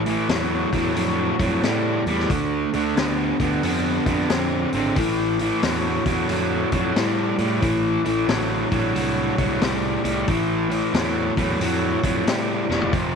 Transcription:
0.00 0.16 A1 medium
0.06 0.27 A2 medium
0.06 0.27 E3 medium
0.06 open hi-hat medium
0.29 0.64 E2 medium
0.29 0.68 A2 medium
0.29 0.68 F#3 medium
0.29 snare loud
0.29 open hi-hat medium
0.72 0.92 E2 medium
0.72 0.94 A2 medium
0.72 0.94 F#3 medium
0.72 kick medium
0.72 open hi-hat medium
0.95 1.31 F2 medium
0.95 1.34 A2 medium
0.95 1.35 F#3 medium
0.95 open hi-hat medium
1.39 1.58 F2 medium
1.39 1.60 A2 medium
1.39 1.61 F#3 medium
1.39 kick medium
1.39 open hi-hat medium
1.63 1.98 A2 medium
1.63 2.02 A2 medium
1.63 2.02 G3 medium
1.63 snare medium
1.63 open hi-hat medium
2.06 2.25 E2 medium
2.06 2.28 A2 medium
2.06 2.28 G3 medium
2.06 open hi-hat soft
2.19 snare soft
2.30 2.65 D2 medium
2.30 2.69 D3 medium
2.30 2.69 A3 medium
2.30 kick loud
2.30 open hi-hat medium
2.73 2.92 D2 medium
2.73 2.94 D3 medium
2.73 2.95 A3 medium
2.73 open hi-hat soft
2.97 3.32 D2 medium
2.97 3.35 D3 medium
2.97 3.36 B3 medium
2.97 snare loud
2.97 open hi-hat medium
3.40 3.59 D2 medium
3.40 3.61 D3 medium
3.40 3.61 B3 medium
3.40 kick medium
3.40 open hi-hat medium
3.63 3.98 F2 medium
3.63 4.02 D3 medium
3.63 4.02 B3 medium
3.63 open hi-hat medium
4.06 4.25 F2 medium
4.06 4.28 D3 medium
4.06 4.28 B3 medium
4.06 kick medium
4.06 open hi-hat medium
4.30 4.64 F2 medium
4.30 4.68 D3 medium
4.30 4.69 C4 medium
4.30 snare loud
4.30 open hi-hat medium
4.73 4.92 G#1 medium
4.73 4.95 D3 medium
4.73 4.95 C4 medium
4.73 open hi-hat medium
4.96 5.50 A1 medium
4.96 5.35 A2 medium
4.96 5.36 E3 medium
4.96 kick loud
4.96 open hi-hat medium
5.39 5.61 A2 medium
5.39 5.61 E3 medium
5.39 open hi-hat medium
5.63 5.98 E2 medium
5.63 6.02 A2 medium
5.63 6.02 F#3 medium
5.63 snare loud
5.63 open hi-hat medium
6.06 6.25 E2 medium
6.06 6.27 A2 medium
6.06 6.27 F#3 medium
6.06 kick medium
6.06 open hi-hat medium
6.29 6.64 F2 medium
6.29 6.68 A2 medium
6.29 6.68 F#3 medium
6.29 open hi-hat medium
6.72 6.91 F2 medium
6.72 6.93 A2 medium
6.72 6.94 F#3 medium
6.72 kick medium
6.72 open hi-hat medium
6.96 7.31 A2 medium
6.96 7.35 A2 medium
6.96 7.35 G3 medium
6.96 snare loud
6.96 open hi-hat medium
7.38 7.58 A2 medium
7.38 7.60 A2 medium
7.38 7.60 G3 medium
7.38 open hi-hat medium
7.62 7.97 A1 loud
7.62 8.01 A2 medium
7.62 8.01 E3 loud
7.62 kick loud
7.62 open hi-hat medium
8.05 8.24 A1 medium
8.05 8.26 A2 medium
8.05 8.26 E3 medium
8.05 open hi-hat soft
8.28 8.63 A1 medium
8.28 8.67 A2 medium
8.28 8.67 F#3 loud
8.28 snare loud
8.28 open hi-hat medium
8.71 8.91 A1 medium
8.71 8.92 A2 medium
8.71 8.93 F#3 medium
8.71 kick medium
8.71 open hi-hat medium
8.95 9.30 C2 medium
8.95 9.33 A2 medium
8.95 9.34 F#3 loud
8.95 open hi-hat medium
9.38 9.57 C2 medium
9.38 9.59 A2 medium
9.38 9.59 F#3 medium
9.38 kick medium
9.38 open hi-hat soft
9.61 9.96 C2 medium
9.61 10.00 A2 medium
9.61 10.00 G3 loud
9.61 snare loud
9.61 open hi-hat medium
10.04 10.23 C2 medium
10.04 10.25 A2 medium
10.04 10.25 G3 medium
10.04 open hi-hat medium
10.28 10.81 A1 medium
10.28 10.66 A2 medium
10.28 10.67 E3 loud
10.28 kick loud
10.28 open hi-hat medium
10.70 10.91 A2 medium
10.70 10.92 E3 medium
10.70 open hi-hat medium
10.93 11.29 E2 medium
10.93 11.32 A2 medium
10.93 11.33 F#3 medium
10.93 snare loud
10.93 open hi-hat medium
11.37 11.56 E2 medium
11.37 11.58 A2 medium
11.37 11.58 F#3 medium
11.37 kick medium
11.37 open hi-hat medium
11.60 11.95 F2 medium
11.60 11.99 A2 medium
11.60 11.99 F#3 medium
11.60 open hi-hat medium
12.03 12.22 F2 medium
12.03 12.24 A2 medium
12.03 12.24 F#3 medium
12.03 kick medium
12.03 open hi-hat medium
12.26 12.61 A2 medium
12.26 12.65 A2 medium
12.26 12.65 G3 medium
12.26 snare loud
12.26 open hi-hat medium
12.69 12.88 E1 medium
12.69 12.90 A2 medium
12.69 12.91 G3 medium
12.69 snare medium
12.82 floor tom medium
12.92 13.15 F1 medium
12.92 13.15 F2 medium
12.92 13.15 C3 medium
12.92 kick loud
12.92 open hi-hat medium

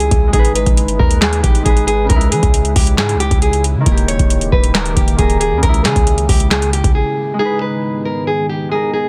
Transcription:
0.00 0.32 C#3 medium
0.00 0.38 C#3 medium
0.00 0.26 G#3 medium
0.00 3.82 G#3 medium
0.00 0.32 E4 medium
0.00 0.39 E4 medium
0.00 0.31 G#4 medium
0.00 closed hi-hat medium
0.11 0.32 C#2 loud
0.11 kick loud
0.11 closed hi-hat medium
0.28 1.61 G#3 medium
0.33 0.65 G#1 loud
0.33 2.08 D#4 medium
0.33 1.65 D#4 medium
0.33 0.54 G#4 loud
0.33 2.08 B4 medium
0.33 kick loud
0.33 closed hi-hat medium
0.39 1.68 B4 medium
0.45 closed hi-hat medium
0.55 0.97 B4 medium
0.55 closed hi-hat medium
0.66 0.90 G#1 loud
0.66 kick loud
0.66 closed hi-hat medium
0.77 closed hi-hat medium
0.88 0.99 G1 loud
0.88 closed hi-hat medium
0.99 1.42 D#2 loud
0.99 1.20 A#4 medium
0.99 kick loud
1.11 closed hi-hat medium
1.21 1.42 G#4 medium
1.21 snare loud
1.21 clap medium
1.21 closed hi-hat medium
1.33 closed hi-hat medium
1.43 1.65 G#1 loud
1.43 1.64 G4 medium
1.43 kick loud
1.43 closed hi-hat medium
1.55 closed hi-hat medium
1.62 2.08 G#1 loud
1.62 2.09 G#3 medium
1.62 2.10 D#4 medium
1.62 1.86 G#4 medium
1.62 kick loud
1.62 closed hi-hat medium
1.68 2.11 B4 medium
1.77 closed hi-hat medium
1.87 2.08 G#4 medium
1.87 closed hi-hat medium
2.04 3.91 C#3 medium
2.09 2.33 C#2 loud
2.09 3.84 C#3 medium
2.09 3.91 G#3 medium
2.09 3.84 E4 medium
2.09 2.30 A#4 loud
2.09 kick loud
2.09 closed hi-hat medium
2.16 4.77 E4 medium
2.21 closed hi-hat medium
2.32 2.42 E3 loud
2.32 2.73 G#4 medium
2.32 closed hi-hat medium
2.43 2.75 C#2 loud
2.43 kick loud
2.43 closed hi-hat medium
2.54 closed hi-hat medium
2.65 closed hi-hat medium
2.76 3.00 C#2 loud
2.76 2.97 G4 medium
2.76 kick loud
2.76 open hi-hat medium
2.87 closed hi-hat medium
2.98 3.16 G#2 loud
2.98 3.19 G#4 medium
2.98 snare loud
2.98 clap medium
2.98 closed hi-hat medium
3.09 closed hi-hat medium
3.15 3.30 C#2 loud
3.20 3.41 G4 loud
3.20 closed hi-hat medium
3.31 3.77 C#2 loud
3.31 kick medium
3.31 closed hi-hat medium
3.42 3.63 G#4 medium
3.42 closed hi-hat medium
3.53 closed hi-hat medium
3.64 closed hi-hat medium
3.75 3.86 C#3 loud
3.80 5.15 D#3 medium
3.86 4.18 D#1 loud
3.86 5.61 D#3 medium
3.86 5.19 A#3 medium
3.86 5.61 A#3 medium
3.86 5.61 G4 medium
3.86 4.07 A#4 loud
3.86 kick loud
3.86 closed hi-hat medium
3.92 5.69 G4 medium
3.98 closed hi-hat medium
4.08 4.50 C#5 medium
4.08 closed hi-hat medium
4.19 4.51 D#1 loud
4.19 kick loud
4.19 closed hi-hat medium
4.30 closed hi-hat medium
4.41 closed hi-hat medium
4.52 4.95 D#1 loud
4.52 4.73 B4 medium
4.52 kick loud
4.64 closed hi-hat medium
4.74 4.95 A#4 medium
4.74 snare loud
4.74 clap medium
4.74 closed hi-hat medium
4.86 closed hi-hat medium
4.96 5.18 D#1 loud
4.96 5.17 G4 medium
4.96 kick loud
4.96 closed hi-hat medium
5.08 closed hi-hat medium
5.16 5.53 D#1 loud
5.16 5.68 D#3 medium
5.16 5.63 A#3 soft
5.16 5.39 G#4 medium
5.16 kick loud
5.16 closed hi-hat medium
5.22 5.64 A#4 medium
5.30 closed hi-hat medium
5.40 5.61 G#4 medium
5.40 closed hi-hat medium
5.52 5.62 D#2 loud
5.57 7.44 C#3 medium
5.63 5.86 C#2 loud
5.63 7.37 C#3 medium
5.63 7.37 G#3 medium
5.63 7.33 G#3 medium
5.63 7.37 E4 medium
5.63 5.83 A#4 loud
5.63 kick loud
5.63 closed hi-hat medium
5.69 7.45 E4 medium
5.74 closed hi-hat medium
5.85 5.95 C#3 loud
5.85 6.26 G#4 medium
5.85 snare medium
5.85 clap medium
5.85 closed hi-hat medium
5.96 6.28 C#2 loud
5.96 kick loud
5.96 closed hi-hat medium
6.07 closed hi-hat medium
6.18 closed hi-hat medium
6.29 6.82 C#2 loud
6.29 6.50 G4 medium
6.29 kick loud
6.29 open hi-hat medium
6.40 closed hi-hat medium
6.51 6.71 G#4 medium
6.51 snare loud
6.51 clap medium
6.51 closed hi-hat medium
6.62 closed hi-hat medium
6.73 6.94 G4 medium
6.73 closed hi-hat medium
6.84 6.95 C#2 loud
6.84 kick medium
6.84 closed hi-hat medium
6.95 7.37 G#4 medium
7.34 8.68 G#3 medium
7.39 9.09 G#2 medium
7.39 9.09 D#3 medium
7.39 9.09 B3 medium
7.39 8.71 D#4 medium
7.39 7.60 G#4 loud
7.45 8.81 B4 medium
7.61 8.03 B4 medium
8.05 8.26 A#4 medium
8.27 8.48 G#4 medium
8.49 8.70 G4 medium
8.69 9.09 G#3 medium
8.69 9.09 D#4 soft
8.69 8.92 G#4 medium
8.75 9.09 A#4 medium
8.94 9.09 G#4 medium

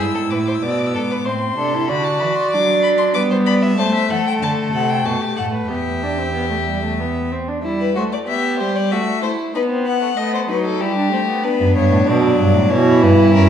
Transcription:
0.00 0.32 G#2 medium
0.00 0.64 E4 medium
0.00 0.32 E6 medium
0.14 0.21 A4 medium
0.30 0.62 A2 medium
0.30 0.37 B4 medium
0.30 0.41 D6 soft
0.39 0.47 E6 medium
0.46 0.53 C5 medium
0.46 0.56 D6 soft
0.54 0.64 E6 medium
0.62 0.96 B2 medium
0.62 1.28 B3 medium
0.62 0.94 D5 medium
0.62 0.72 D6 medium
0.70 0.79 E6 medium
0.78 0.88 D6 medium
0.87 0.96 E6 medium
0.94 1.27 G#2 medium
0.94 1.01 A4 medium
0.94 1.26 D6 medium
1.10 1.17 B4 medium
1.25 1.56 A2 medium
1.25 1.58 C4 medium
1.25 1.33 C5 medium
1.25 1.87 C6 medium
1.57 1.90 C3 medium
1.57 1.75 D4 medium
1.57 1.90 A4 medium
1.74 1.89 E4 medium
1.88 2.20 D3 medium
1.88 2.55 F#4 medium
1.88 3.14 D5 medium
1.88 2.06 B5 medium
2.04 2.21 A5 medium
2.20 2.28 E3 medium
2.20 2.37 B5 medium
2.35 2.50 C6 medium
2.51 3.16 F#3 medium
2.51 3.16 D4 medium
2.51 2.83 D6 medium
2.83 2.90 B5 medium
2.98 3.05 C6 medium
3.14 3.78 G3 medium
3.14 3.78 B3 medium
3.14 3.21 B4 medium
3.14 3.22 D6 medium
3.30 3.37 C5 medium
3.46 3.64 D5 medium
3.46 3.54 B5 medium
3.63 3.81 E5 medium
3.78 3.86 A3 medium
3.78 5.72 A3 medium
3.78 4.11 C5 medium
3.78 3.94 A5 medium
3.94 4.12 E5 medium
4.10 4.18 E3 medium
4.10 5.07 A4 medium
4.10 4.26 F#5 medium
4.27 4.33 G5 medium
4.42 4.72 D3 medium
4.42 4.50 A5 medium
4.73 5.05 C3 medium
4.73 4.91 F#5 medium
4.90 5.07 G5 medium
5.05 5.13 B2 medium
5.05 5.23 F#4 medium
5.05 5.36 A5 medium
5.21 5.38 G4 medium
5.37 5.69 A2 medium
5.37 5.52 A4 medium
5.37 5.45 F#5 medium
5.52 5.69 B4 medium
5.68 7.28 E2 medium
5.68 6.04 B3 medium
5.68 7.31 G4 medium
5.68 7.29 E5 medium
6.03 6.20 D4 medium
6.18 6.33 C4 medium
6.34 6.50 B3 medium
6.51 6.57 A3 medium
6.68 6.83 G3 medium
6.83 7.02 A3 medium
7.00 7.33 B3 medium
7.32 7.50 C4 medium
7.48 7.63 D4 medium
7.63 7.94 G3 medium
7.63 7.93 E4 medium
7.80 7.95 B4 medium
7.95 8.27 A3 medium
7.95 8.03 F#4 medium
7.95 8.03 C5 medium
8.12 8.19 D5 medium
8.27 8.62 B3 medium
8.27 8.93 G4 medium
8.27 8.59 E5 medium
8.60 8.94 G3 medium
8.60 8.77 C5 medium
8.75 8.93 D5 medium
8.91 9.23 A3 medium
8.91 9.22 F#4 medium
8.91 9.22 E5 medium
9.22 9.31 A3 medium
9.22 9.54 E4 medium
9.22 9.30 C5 medium
9.55 10.17 B3 medium
9.55 9.61 D#4 medium
9.55 9.63 B4 medium
9.70 9.87 C4 medium
9.86 10.01 B3 medium
9.86 10.19 F#5 medium
10.01 10.08 A3 medium
10.17 10.49 A3 medium
10.17 10.50 B3 medium
10.17 10.33 D#5 medium
10.34 10.40 C5 medium
10.48 10.82 F#3 medium
10.48 10.83 D#4 medium
10.48 10.65 B4 medium
10.65 10.82 A4 medium
10.81 11.12 G3 medium
10.81 10.96 E4 medium
10.81 11.45 G4 medium
10.97 11.12 D4 medium
11.12 11.46 A3 medium
11.12 11.19 C4 medium
11.28 11.45 B3 medium
11.43 12.10 B3 medium
11.43 12.72 D4 medium
11.43 11.76 B4 medium
11.60 11.67 F#2 medium
11.76 11.91 G2 medium
11.76 12.08 C#5 medium
11.92 11.98 A2 medium
12.06 12.39 B2 medium
12.06 12.73 F#3 medium
12.06 12.71 D5 medium
12.39 12.56 G2 medium
12.55 12.70 A2 medium
12.70 13.04 B2 loud
12.70 13.33 E3 medium
12.70 13.49 E4 medium
12.70 13.03 C#5 medium
13.02 13.36 G2 medium
13.02 13.33 B4 medium
13.34 13.49 F#2 loud
13.34 13.49 C#4 medium
13.34 13.49 A#4 medium

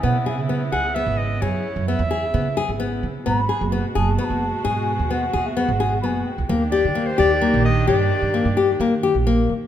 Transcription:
0.00 0.38 B2 medium
0.00 3.22 C#3 medium
0.00 3.23 B3 medium
0.00 0.16 B3 medium
0.00 3.23 E4 medium
0.04 0.25 F#5 medium
0.25 0.39 G#4 medium
0.25 0.72 E5 medium
0.25 0.30 F#5 medium
0.38 0.68 C#3 medium
0.49 0.62 B3 medium
0.72 1.02 C#2 medium
0.72 0.85 G#4 medium
0.72 0.96 F#5 loud
0.95 1.21 B3 medium
0.95 1.19 E5 medium
1.06 1.37 G#1 medium
1.17 1.43 D#5 medium
1.42 1.62 F#2 medium
1.42 1.67 G#4 medium
1.42 1.87 C#5 medium
1.76 1.96 F#2 medium
1.88 2.01 B3 medium
1.88 2.76 E5 medium
1.99 2.29 E2 medium
2.11 2.24 G#4 medium
2.34 2.64 C#3 medium
2.34 2.47 B3 medium
2.57 2.70 G#4 medium
2.69 2.99 G#1 medium
2.80 3.05 B3 medium
3.03 3.13 C#3 medium
3.26 3.46 G#1 medium
3.26 6.47 B2 medium
3.26 6.47 G#3 medium
3.26 3.39 B3 medium
3.26 6.46 F#4 medium
3.26 3.69 B5 loud
3.49 3.62 G#4 medium
3.61 3.81 F#1 medium
3.72 3.85 B3 medium
3.95 4.16 F#1 medium
3.95 4.08 G#4 medium
3.95 4.18 A5 medium
4.18 4.44 B3 medium
4.18 4.25 B5 medium
4.24 4.62 A5 loud
4.30 4.50 F#1 medium
4.65 4.95 G#2 medium
4.65 4.90 G#4 medium
4.65 5.12 G#5 medium
4.99 5.29 D#2 medium
5.10 5.23 B3 medium
5.10 5.47 F#5 medium
5.33 5.64 D#2 medium
5.33 5.46 G#4 medium
5.45 5.58 E5 medium
5.56 5.70 B3 medium
5.56 6.01 F#5 medium
5.68 6.03 G#1 medium
5.80 5.93 G#4 medium
6.01 6.23 F#1 medium
6.01 6.29 B3 medium
6.01 6.24 G#5 medium
6.01 6.06 B5 medium
6.25 9.22 G5 medium
6.38 6.48 C#2 medium
6.48 6.86 D#2 medium
6.48 9.67 D#3 medium
6.48 6.62 A#3 medium
6.48 9.67 D4 medium
6.48 9.67 G4 medium
6.71 6.85 G4 medium
6.71 7.08 D5 medium
6.85 7.15 D#3 medium
6.95 7.08 A#3 medium
7.06 7.18 C5 medium
7.18 7.49 D#2 medium
7.18 7.31 G4 medium
7.18 7.62 D5 medium
7.41 7.67 A#3 medium
7.54 7.84 A#1 medium
7.65 7.87 D#5 medium
7.87 8.08 G2 medium
7.87 8.13 G4 medium
7.87 8.76 D5 medium
8.22 8.42 G2 medium
8.34 8.47 A#3 medium
8.45 8.75 G2 medium
8.57 8.70 G4 medium
8.80 9.10 D#3 loud
8.80 8.93 A#3 medium
9.03 9.16 G4 medium
9.15 9.45 A#1 medium
9.27 9.52 A#3 medium
9.49 9.60 D#3 medium

